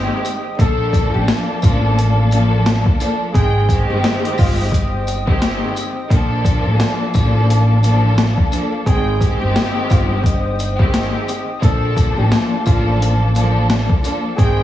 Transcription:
Already playing: D#3 G#3 C4 G4 C5 D#5 G5 D#6
0.25 closed hi-hat, tambourine
0.58 A#1 F3 A#3 D4 A4 F5 A5 D6, kick, closed hi-hat
0.93 kick, closed hi-hat, tambourine
1.13 A1 G4
1.28 snare, closed hi-hat
1.62 A1 F3 A#3 D4 F4 A4, kick, closed hi-hat, tambourine
1.99 closed hi-hat
2.31 F3 A#3 D4 A4, closed hi-hat, tambourine
2.66 snare, closed hi-hat
2.86 kick
2.99 F3 A#3 D4 A4, closed hi-hat, tambourine
3.33 G#1 D#3 G#3 C4 G#4 C5 D#5 G5 D#6, kick, closed hi-hat
3.69 D#3 G#3 C4 G4, kick, closed hi-hat, tambourine
3.89 G1 G4
4.04 snare, closed hi-hat
4.25 closed hi-hat
4.38 G1 F4, kick, open hi-hat, tambourine
4.72 kick, closed hi-hat
5.07 closed hi-hat, tambourine
5.26 D#3 G#3 C4 G4, kick
5.42 snare, closed hi-hat
5.76 closed hi-hat, tambourine
6.10 A#1 F3 A#3 D4 A4 F5 A5 D6, kick, closed hi-hat
6.45 kick, closed hi-hat, tambourine
6.66 A1
6.80 snare, closed hi-hat
7.14 A1 F3 A#3 D4 A4, kick, closed hi-hat, tambourine
7.50 closed hi-hat
7.83 F3 A#3 D4 A4, closed hi-hat, tambourine
8.18 snare, closed hi-hat
8.38 kick
8.50 F3 A#3 D4 A4, closed hi-hat, tambourine
8.85 G#1 D#3 G#3 C4 G#4 C5 D#5 G5 D#6, kick, closed hi-hat
9.21 D#3 G#3 C4 G4, kick, closed hi-hat, tambourine
9.40 G1 G4
9.56 snare, closed hi-hat
9.89 G1 F4, kick, closed hi-hat, tambourine
10.24 kick, closed hi-hat
10.59 closed hi-hat, tambourine
10.78 D#3 G#3 C4 G4, kick
10.94 snare, closed hi-hat
11.28 closed hi-hat, tambourine
11.61 A#1 F3 A#3 D4 A4 F5 A5 D6, kick, closed hi-hat
11.97 kick, closed hi-hat, tambourine
12.17 A1 G4
12.32 snare, closed hi-hat
12.65 A1 F3 A#3 D4 F4 A4, kick, closed hi-hat, tambourine
13.02 closed hi-hat
13.35 F3 A#3 D4 A4, closed hi-hat, tambourine
13.70 snare, closed hi-hat
13.90 kick
14.02 F3 A#3 D4 A4, closed hi-hat, tambourine
14.37 G#1 D#3 G#3 C4 G#4 C5 D#5 G5 D#6, kick, closed hi-hat

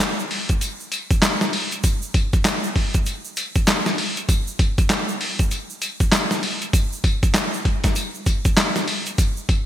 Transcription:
0.00 clap, closed hi-hat, tambourine, shaker
0.19 shaker
0.31 open hi-hat
0.49 kick, closed hi-hat, shaker
0.61 closed hi-hat, tambourine, shaker
0.80 shaker
0.92 closed hi-hat, tambourine, shaker
1.11 kick, closed hi-hat, shaker
1.22 snare, clap, closed hi-hat, tambourine, shaker
1.41 snare, shaker
1.53 open hi-hat, tambourine
1.72 closed hi-hat, shaker
1.84 kick, closed hi-hat, tambourine, shaker
2.02 shaker
2.14 kick, closed hi-hat, tambourine
2.33 kick, closed hi-hat, shaker
2.45 snare, clap, closed hi-hat, tambourine, shaker
2.64 shaker
2.76 kick, open hi-hat
2.94 kick, closed hi-hat, shaker
3.06 closed hi-hat, tambourine, shaker
3.25 shaker
3.36 closed hi-hat, tambourine, shaker
3.55 kick, closed hi-hat, shaker
3.67 snare, clap, closed hi-hat, tambourine, shaker
3.86 snare, shaker
3.98 open hi-hat, tambourine
4.17 closed hi-hat, shaker
4.29 kick, closed hi-hat, tambourine, shaker
4.47 shaker
4.59 kick, closed hi-hat, tambourine
4.78 kick, closed hi-hat, shaker
4.90 snare, clap, closed hi-hat, tambourine, shaker
5.09 shaker
5.21 open hi-hat
5.39 kick, closed hi-hat, shaker
5.51 closed hi-hat, tambourine, shaker
5.70 shaker
5.82 closed hi-hat, tambourine, shaker
6.00 kick, closed hi-hat, shaker
6.12 snare, clap, closed hi-hat, tambourine, shaker
6.31 snare, shaker
6.43 open hi-hat, tambourine
6.62 closed hi-hat, shaker
6.73 kick, closed hi-hat, tambourine, shaker
6.92 shaker
7.04 kick, closed hi-hat, tambourine
7.23 kick, closed hi-hat, shaker
7.34 snare, clap, closed hi-hat, tambourine, shaker
7.53 shaker
7.65 kick, closed hi-hat
7.84 kick, snare, closed hi-hat, shaker
7.96 closed hi-hat, tambourine, shaker
8.14 shaker
8.26 kick, closed hi-hat, tambourine, shaker
8.45 kick, closed hi-hat, shaker
8.57 snare, clap, closed hi-hat, tambourine, shaker
8.76 snare, shaker
8.88 open hi-hat, tambourine
9.06 closed hi-hat, shaker
9.18 kick, closed hi-hat, tambourine, shaker
9.37 shaker
9.49 kick, closed hi-hat, tambourine

